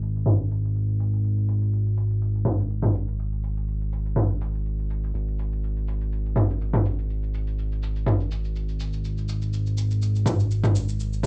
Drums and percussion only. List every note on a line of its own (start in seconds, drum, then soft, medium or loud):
0.02 cabasa medium
0.16 cabasa soft
0.26 mid tom medium
0.26 cabasa medium
0.40 cabasa soft
0.51 cabasa medium
0.64 cabasa soft
0.75 cabasa medium
0.88 cabasa soft
1.00 cabasa medium
1.13 cabasa soft
1.24 cabasa soft
1.37 cabasa soft
1.48 cabasa medium
1.61 cabasa soft
1.73 cabasa medium
1.86 cabasa soft
1.97 cabasa medium
2.10 cabasa soft
2.21 cabasa medium
2.35 cabasa soft
2.45 mid tom medium
2.45 cabasa medium
2.59 cabasa soft
2.70 cabasa soft
2.83 mid tom medium
2.83 cabasa soft
2.94 cabasa loud
3.08 cabasa soft
3.19 cabasa soft
3.32 cabasa soft
3.43 cabasa medium
3.57 cabasa soft
3.68 cabasa medium
3.81 cabasa soft
3.92 cabasa medium
4.06 cabasa soft
4.16 mid tom medium
4.16 cabasa medium
4.30 cabasa soft
4.41 cabasa medium
4.54 cabasa soft
4.66 cabasa soft
4.79 cabasa soft
4.90 cabasa medium
5.03 cabasa soft
5.14 cabasa soft
5.28 cabasa soft
5.39 cabasa medium
5.52 cabasa soft
5.63 cabasa medium
5.76 cabasa soft
5.88 cabasa medium
6.01 cabasa soft
6.12 cabasa soft
6.25 cabasa soft
6.36 mid tom medium
6.36 cabasa medium
6.50 cabasa soft
6.61 cabasa soft
6.73 mid tom medium
6.73 cabasa soft
6.85 cabasa medium
6.99 cabasa soft
7.10 cabasa soft
7.23 cabasa soft
7.34 cabasa medium
7.47 cabasa soft
7.58 cabasa soft
7.72 cabasa soft
7.83 cabasa medium
7.96 cabasa soft
8.06 mid tom medium
8.06 cabasa soft
8.20 cabasa soft
8.31 cabasa medium
8.45 cabasa soft
8.56 cabasa soft
8.69 cabasa soft
8.80 cabasa medium
8.93 cabasa soft
9.05 cabasa soft
9.18 cabasa soft
9.29 cabasa medium
9.42 cabasa soft
9.53 cabasa soft
9.67 cabasa soft
9.78 cabasa medium
9.91 cabasa soft
10.02 cabasa soft
10.16 cabasa soft
10.26 mid tom medium
10.26 cabasa medium
10.40 cabasa soft
10.51 cabasa soft
10.64 mid tom loud
10.64 cabasa soft
10.75 cabasa medium
10.89 cabasa soft
11.00 cabasa soft
11.13 cabasa soft
11.23 mid tom medium